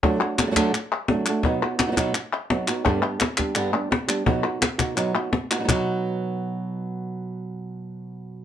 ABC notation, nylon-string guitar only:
X:1
M:4/4
L:1/8
Q:1/4=170
K:none
V:1 name="Nylon-string guitar"
[D,^F,A,D^F] [A,DF] [A,DF] [D,F,A,DF] z2 [F,A,DF] [A,DF] | [B,,^F,B,^D^F] [B,DF] [B,DF] [B,,F,B,DF] z2 [F,B,DF] [B,DF] | [G,,D,G,B,DG] [G,B,DG] z [G,B,DG] [G,,D,G,B,DG] [G,B,DG] z [G,B,DG] | [B,,^F,B,^D^F] [B,DF] z [B,DF] [B,,F,B,DF] [B,DF] z [B,DF] |
[B,,^F,B,^D^F]8- | [B,,^F,B,^D^F]8 |]